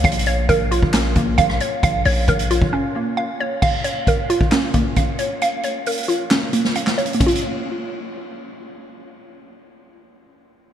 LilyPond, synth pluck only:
\new Staff \with { instrumentName = "Synth pluck" } { \time 4/4 \key bes \minor \tempo 4 = 134 f''8 des''8 bes'8 f'8 des'8 bes8 f''8 des''8 | f''8 des''8 bes'8 f'8 des'8 bes8 f''8 des''8 | f''8 des''8 bes'8 f'8 des'8 bes8 f''8 des''8 | f''8 des''8 bes'8 f'8 des'8 bes8 f''8 des''8 |
<bes des' f'>1~ | <bes des' f'>1 | }